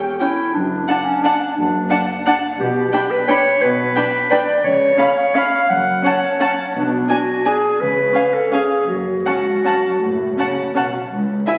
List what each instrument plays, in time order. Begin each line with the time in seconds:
Already playing: clarinet G4
0.20 viola section C#4, clarinet E4, violin section G5
0.54 double bass section F#1, cello section F#2, clarinet D4
0.89 viola section D4, violin section F#5 A5
1.05 clarinet C#4
1.23 clarinet D4, viola section D4, violin section F#5 A5
1.57 double bass section F#1, cello section F#2, clarinet D4
1.91 viola section D4, violin section F#5 A5
2.26 viola section D4, violin section F#5 A5
2.59 double bass section B1, cello section B2, clarinet G4
2.93 viola section D4, violin section G5 B5
3.11 clarinet B4
3.28 viola section D4, clarinet C#5, violin section G5 B5
3.62 double bass section B1, cello section B2, clarinet B4
3.96 viola section D4, violin section G5 B5
4.31 viola section D4, clarinet D5, violin section G5 B5
4.64 double bass section C#2, cello section C#3, clarinet C#5
4.98 viola section C#4, clarinet C#5, violin section F5 B5
5.35 viola section C#4, clarinet F5, violin section F5 B5
5.69 double bass section F#1, cello section F#2, clarinet F#5
6.04 viola section C#4, clarinet C#5, violin section F#5 A5
6.41 viola section C#4, violin section F#5 A5
6.75 double bass section B1, cello section B2, clarinet D4
7.09 viola section D4, clarinet F#4, violin section G#5
7.46 viola section D4, clarinet G#4, violin section G#5
7.80 double bass section C#2, cello section C#3, clarinet B4
8.14 viola section C#4, violin section F5 G#5
8.34 clarinet A4
8.52 viola section C#4, clarinet G#4, violin section F5 G#5
8.88 double bass section F#1, cello section F#2, clarinet F#4
9.26 cello section C#2, viola section C#4, violin section F#5 A5
9.65 cello section F#2, viola section C#4, violin section F#5 A5
10.01 double bass section F#1, cello section A2
10.38 cello section C#3, viola section C#4, violin section F#5 A5
10.75 cello section B2, viola section C#4, violin section F#5 A5
11.11 double bass section C#2, cello section C#2
11.46 viola section E4, violin section E5 G#5